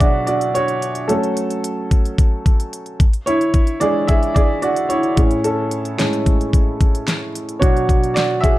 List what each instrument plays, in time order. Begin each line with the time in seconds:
Already playing: upright piano B2 F#3 D4 G#4 C#5 E5
0.00 upright piano F#4 D5, kick, closed hi-hat
0.27 upright piano F#4 D5, closed hi-hat
0.41 closed hi-hat
0.55 upright piano F#4 C#5, closed hi-hat
0.68 closed hi-hat
0.82 closed hi-hat
0.95 closed hi-hat
1.08 upright piano F#3 A3 C#4 A4, closed hi-hat
1.24 closed hi-hat
1.37 closed hi-hat
1.50 closed hi-hat
1.64 closed hi-hat
1.91 kick, closed hi-hat
2.05 closed hi-hat
2.18 kick, closed hi-hat
2.46 kick, closed hi-hat
2.60 closed hi-hat
2.73 closed hi-hat
2.86 closed hi-hat
3.00 kick, closed hi-hat
3.13 closed hi-hat
3.26 upright piano E4 C#5, closed hi-hat
3.41 closed hi-hat
3.54 kick, closed hi-hat
3.67 closed hi-hat
3.80 upright piano E3 G#3 D4 G#4 D5, closed hi-hat
4.07 upright piano G#4 E5, kick, closed hi-hat
4.23 closed hi-hat
4.34 upright piano G#4 D5, kick, closed hi-hat
4.62 upright piano F#4 D5, closed hi-hat
4.76 closed hi-hat
4.89 upright piano E4 C#5, closed hi-hat
5.03 closed hi-hat
5.16 upright piano A2 C#4 G#4, kick, closed hi-hat
5.31 closed hi-hat
5.44 upright piano C#4 A4, closed hi-hat
5.71 closed hi-hat
5.85 closed hi-hat
5.98 upright piano A2 G#3 C#4, snare, clap, closed hi-hat
6.13 closed hi-hat
6.26 kick, closed hi-hat
6.41 closed hi-hat
6.53 kick, closed hi-hat
6.81 kick, closed hi-hat
6.95 closed hi-hat
7.08 snare, clap, closed hi-hat
7.35 closed hi-hat
7.49 closed hi-hat
7.60 upright piano B2 F#3 D4 F#4 C#5, kick, closed hi-hat
7.77 closed hi-hat
7.89 kick, closed hi-hat
8.04 closed hi-hat
8.14 upright piano F#4 D5, snare, clap, closed hi-hat
8.41 upright piano G#4 E5, kick, closed hi-hat